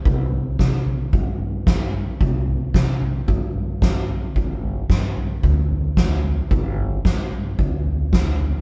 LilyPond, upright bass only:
\new Staff \with { instrumentName = "Upright bass" } { \clef bass \time 4/4 \key g \mixolydian \tempo 4 = 112 c,4 c4 g,2 | c,4 c4 g,2 | g,,4 g,4 d,2 | g,,4 g,4 d,2 | }